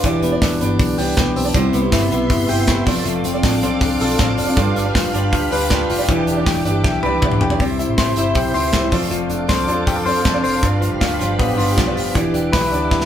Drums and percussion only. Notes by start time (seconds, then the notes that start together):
0.03 kick, hi-hat pedal, open hi-hat
0.23 hi-hat pedal, open hi-hat
0.42 kick, snare, hi-hat pedal, open hi-hat
0.61 hi-hat pedal, open hi-hat
0.79 kick, hi-hat pedal, open hi-hat
0.98 hi-hat pedal, open hi-hat
1.17 kick, snare, hi-hat pedal, open hi-hat
1.36 hi-hat pedal, open hi-hat
1.54 kick, hi-hat pedal, open hi-hat
1.73 hi-hat pedal, open hi-hat
1.92 kick, snare, hi-hat pedal, open hi-hat
2.11 hi-hat pedal, open hi-hat
2.30 kick, hi-hat pedal, open hi-hat
2.49 hi-hat pedal, open hi-hat
2.67 kick, snare, hi-hat pedal, open hi-hat
2.87 kick, hi-hat pedal, open hi-hat
3.06 hi-hat pedal, open hi-hat
3.24 hi-hat pedal, open hi-hat
3.43 kick, snare, hi-hat pedal, open hi-hat
3.62 hi-hat pedal, open hi-hat
3.81 kick, hi-hat pedal, open hi-hat
4.00 hi-hat pedal, open hi-hat
4.19 kick, snare, hi-hat pedal, open hi-hat
4.37 hi-hat pedal, open hi-hat
4.57 kick, hi-hat pedal, open hi-hat
4.76 hi-hat pedal, open hi-hat
4.95 kick, snare, hi-hat pedal, open hi-hat
5.14 hi-hat pedal, open hi-hat
5.32 kick, hi-hat pedal, open hi-hat
5.52 hi-hat pedal, open hi-hat
5.70 kick, snare, hi-hat pedal, open hi-hat
5.90 hi-hat pedal, open hi-hat
6.08 kick, hi-hat pedal, open hi-hat
6.27 hi-hat pedal, open hi-hat
6.46 kick, snare, hi-hat pedal, open hi-hat
6.65 hi-hat pedal, open hi-hat
6.84 kick, snare
7.03 high tom
7.22 kick, mid tom
7.32 mid tom
7.41 floor tom
7.50 floor tom
7.60 kick, open hi-hat
7.79 hi-hat pedal, open hi-hat
7.98 kick, snare, hi-hat pedal, open hi-hat
8.16 hi-hat pedal, open hi-hat
8.35 kick, hi-hat pedal, open hi-hat
8.54 hi-hat pedal, open hi-hat
8.73 kick, snare, hi-hat pedal, open hi-hat
8.92 kick, hi-hat pedal, open hi-hat
9.11 hi-hat pedal, open hi-hat
9.30 hi-hat pedal, open hi-hat
9.49 kick, snare, hi-hat pedal, open hi-hat
9.68 hi-hat pedal, open hi-hat
9.87 kick, hi-hat pedal, open hi-hat
10.06 hi-hat pedal, open hi-hat
10.25 kick, snare, hi-hat pedal, open hi-hat
10.44 hi-hat pedal, open hi-hat
10.63 kick, hi-hat pedal, open hi-hat
10.82 hi-hat pedal, open hi-hat
11.01 kick, snare, hi-hat pedal, open hi-hat
11.21 hi-hat pedal, open hi-hat
11.39 kick, hi-hat pedal, open hi-hat
11.59 hi-hat pedal, open hi-hat
11.78 kick, snare, hi-hat pedal, open hi-hat
11.97 hi-hat pedal, open hi-hat
12.15 kick, hi-hat pedal, open hi-hat
12.34 hi-hat pedal, open hi-hat
12.53 kick, snare, hi-hat pedal, open hi-hat
12.72 hi-hat pedal, open hi-hat
12.91 kick, snare
13.01 snare